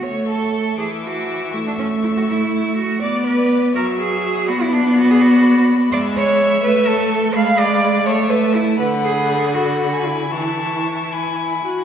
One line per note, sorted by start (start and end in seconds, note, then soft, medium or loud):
0.02 0.74 A3 medium
0.02 0.27 C#5 medium
0.02 2.98 E5 medium
0.02 0.74 C#6 soft
0.28 0.77 A4 medium
0.78 1.55 E3 medium
0.78 0.86 G#4 medium
0.78 1.49 D6 medium
1.03 1.52 F#4 medium
1.52 3.01 A3 medium
1.52 1.66 E4 medium
1.52 2.97 C#6 medium
1.67 1.72 D4 medium
1.79 1.87 C#4 medium
2.03 2.08 E4 medium
2.17 2.22 F#4 medium
2.28 2.76 E4 medium
2.76 3.01 F#4 medium
3.01 3.74 B3 medium
3.01 3.26 D5 medium
3.01 3.71 D5 medium
3.01 3.72 D6 medium
3.26 3.74 B4 medium
3.75 4.50 F#3 medium
3.75 3.83 A#4 medium
3.75 4.45 E5 medium
3.75 4.45 C#6 medium
3.99 4.50 G#4 medium
4.48 5.91 B3 medium
4.48 4.63 F#4 medium
4.48 5.88 D5 medium
4.48 6.60 B5 medium
4.62 4.75 E4 medium
4.73 4.97 D4 medium
4.97 5.12 F#4 medium
5.10 5.23 G#4 medium
5.21 5.69 F#4 medium
5.92 6.62 G#3 medium
5.92 6.00 D5 loud
5.92 7.31 E5 medium
6.16 6.63 C#5 loud
6.63 7.36 A3 medium
6.63 6.89 B4 medium
6.63 7.31 C#6 medium
6.87 7.36 A4 medium
7.35 8.08 G#3 medium
7.35 7.60 F5 loud
7.35 8.03 F5 medium
7.35 8.03 B5 medium
7.59 8.08 D5 loud
8.06 8.79 A3 medium
8.06 8.31 C#5 loud
8.06 8.75 E5 medium
8.06 8.75 A5 medium
8.30 8.56 B4 medium
8.55 8.79 E4 medium
8.79 10.28 D3 medium
8.79 8.87 B4 medium
8.79 9.50 F#5 medium
8.79 9.50 B5 medium
9.04 9.55 G#4 medium
9.54 10.07 F#4 medium
9.54 9.95 F#5 medium
9.54 10.33 B5 medium
9.93 10.33 G#5 medium
10.06 10.32 E4 medium
10.32 11.62 E3 medium
10.32 11.62 E4 medium
10.32 11.14 A5 medium
10.32 11.14 C#6 medium
11.12 11.70 G#5 medium
11.12 11.70 B5 medium
11.64 11.84 F#4 medium